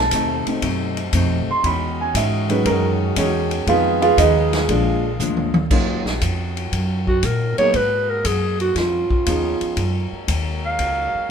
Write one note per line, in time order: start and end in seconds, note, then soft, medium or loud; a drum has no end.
0.00 0.10 B1 medium
0.00 1.62 B2 medium
0.00 1.63 C3 medium
0.00 1.63 A3 medium
0.00 1.63 D#4 medium
0.00 0.44 A5 medium
0.11 0.44 D#2 medium
0.11 0.49 B2 medium
0.11 0.49 A3 medium
0.11 0.49 C4 medium
0.11 0.50 D#4 medium
0.11 kick soft
0.11 hi-hat pedal medium
0.11 ride medium
0.47 0.61 D#3 soft
0.47 0.62 A3 soft
0.47 0.62 C4 soft
0.47 muted upright bass stroke soft
0.47 ride medium
0.62 1.12 F#2 medium
0.62 0.99 B2 medium
0.62 0.99 A3 medium
0.62 1.00 C4 medium
0.62 1.00 D#4 medium
0.62 kick soft
0.62 ride medium
0.97 ride medium
1.13 1.46 F2 loud
1.13 1.50 B2 medium
1.13 1.50 A3 medium
1.13 1.51 C4 medium
1.13 1.51 D#4 medium
1.13 kick soft
1.13 hi-hat pedal medium
1.13 ride medium
1.48 1.65 C6 medium
1.48 muted upright bass stroke soft
1.63 2.13 E2 medium
1.63 4.66 D#3 medium
1.63 2.01 E3 medium
1.63 3.51 G#3 medium
1.63 2.01 G#3 soft
1.63 3.51 C#4 medium
1.63 2.02 C#4 medium
1.63 2.02 D#4 medium
1.63 3.51 F#4 medium
1.63 1.99 B5 medium
1.63 kick soft
1.63 ride medium
2.01 2.15 G#5 medium
2.14 2.64 G#2 loud
2.14 2.52 E3 medium
2.14 2.52 G#3 medium
2.14 2.52 C#4 medium
2.14 2.52 D#4 medium
2.14 2.50 E5 medium
2.14 kick soft
2.14 hi-hat pedal medium
2.14 ride medium
2.50 3.13 D#3 medium
2.50 3.13 F#3 medium
2.50 3.13 G#3 soft
2.50 3.14 C#4 medium
2.50 2.66 B4 medium
2.50 ride medium
2.65 3.15 F#2 medium
2.65 3.02 E3 medium
2.65 3.03 G#3 medium
2.65 3.03 C#4 medium
2.65 3.04 D#4 medium
2.65 2.87 A#4 medium
2.65 kick soft
2.65 ride medium
3.16 3.65 E2 medium
3.16 3.53 E3 medium
3.16 3.53 G#3 medium
3.16 3.53 C#4 medium
3.16 3.64 C#4 medium
3.16 3.54 D#4 medium
3.16 3.65 F#4 medium
3.16 3.64 G#4 medium
3.16 3.64 C#5 medium
3.16 kick soft
3.16 hi-hat pedal medium
3.16 ride medium
3.51 ride medium
3.67 4.16 F2 medium
3.67 4.65 D#3 medium
3.67 4.04 F3 soft
3.67 4.65 G#3 soft
3.67 5.69 G#3 medium
3.67 4.68 B3 medium
3.67 4.04 B3 medium
3.67 4.65 B3 medium
3.67 4.05 D#4 medium
3.67 5.69 F4 medium
3.67 4.01 F4 medium
3.67 4.01 G#4 medium
3.67 4.05 G#4 medium
3.67 4.01 B4 medium
3.67 4.00 F5 medium
3.67 kick soft
3.67 ride medium
4.02 4.18 F4 medium
4.02 4.18 G#4 medium
4.02 4.17 B4 medium
4.02 4.17 F5 medium
4.02 ride soft
4.17 4.67 D#2 medium
4.17 4.55 F3 medium
4.17 4.55 B3 medium
4.17 4.66 D#4 medium
4.17 4.55 D#4 medium
4.17 4.66 G#4 medium
4.17 4.55 G#4 medium
4.17 4.66 B4 medium
4.17 4.65 D#5 medium
4.17 kick soft
4.17 hi-hat pedal medium
4.17 ride medium
4.53 snare medium
4.53 ride medium
4.68 5.18 A#1 medium
4.68 5.06 A#2 medium
4.68 5.69 D3 medium
4.68 5.08 F3 soft
4.68 5.06 F3 medium
4.68 5.09 G#3 soft
4.68 5.06 G#3 medium
4.68 5.69 A#3 medium
4.68 5.09 D4 medium
4.68 5.07 D4 medium
4.68 kick soft
4.68 ride medium
5.19 5.69 D2 loud
5.19 5.56 A#2 medium
5.19 5.57 F3 medium
5.19 5.57 G#3 medium
5.19 5.57 D4 medium
5.19 hi-hat pedal medium
5.19 high tom medium
5.37 high tom medium
5.54 high tom loud
5.70 5.88 D#2 medium
5.70 6.02 D#3 medium
5.70 7.73 D#3 medium
5.70 6.03 F#3 medium
5.70 6.03 A#3 medium
5.70 7.72 C#4 medium
5.70 6.03 C#4 medium
5.70 7.73 F4 medium
5.70 6.03 F4 medium
5.70 7.73 F#4 medium
5.70 kick medium
5.70 crash medium
5.88 6.04 C#2 medium
6.04 6.20 A#1 medium
6.04 snare medium
6.21 6.71 F2 medium
6.21 kick soft
6.21 hi-hat pedal medium
6.21 ride medium
6.57 ride medium
6.72 7.21 F#2 medium
6.72 kick soft
6.72 ride medium
7.07 7.27 F#4 medium
7.07 kick medium
7.23 7.55 A#2 medium
7.23 7.57 A#4 medium
7.23 kick soft
7.23 hi-hat pedal medium
7.23 ride medium
7.58 7.73 F#3 medium
7.58 7.73 A#3 medium
7.58 7.73 B3 medium
7.58 7.73 D#4 medium
7.58 7.73 G#4 medium
7.58 7.78 C#5 loud
7.58 muted upright bass stroke soft
7.58 ride medium
7.74 8.23 G#2 medium
7.74 8.75 B2 medium
7.74 8.75 G#3 medium
7.74 8.75 A#3 medium
7.74 8.75 F#4 medium
7.74 8.11 B4 loud
7.74 kick soft
7.74 ride medium
8.09 8.27 A#4 medium
8.25 8.74 F#2 medium
8.25 8.60 G#4 medium
8.25 kick soft
8.25 hi-hat pedal medium
8.25 ride medium
8.60 8.78 F#4 loud
8.60 ride soft
8.75 9.08 F2 medium
8.75 11.31 D#3 medium
8.75 9.60 B3 medium
8.75 9.60 C#4 medium
8.75 9.60 F4 medium
8.75 10.29 F4 medium
8.75 kick soft
8.75 snare soft
8.75 ride medium
9.10 muted upright bass stroke soft
9.10 kick medium
9.26 9.59 D#2 medium
9.26 9.77 F3 medium
9.26 9.78 B3 medium
9.26 9.78 C#4 soft
9.26 9.78 D#4 medium
9.26 9.78 G#4 medium
9.26 kick soft
9.26 hi-hat pedal medium
9.26 ride medium
9.61 muted upright bass stroke soft
9.61 ride soft
9.77 10.10 F#2 medium
9.77 11.31 F#3 medium
9.77 11.31 G#3 medium
9.77 11.31 A#3 medium
9.77 kick soft
9.77 ride medium
10.12 muted upright bass stroke soft
10.28 10.77 D#2 medium
10.28 kick soft
10.28 hi-hat pedal medium
10.28 ride medium
10.65 11.31 F5 loud
10.79 11.12 C#2 medium
10.79 kick soft
10.79 ride medium
11.14 muted upright bass stroke soft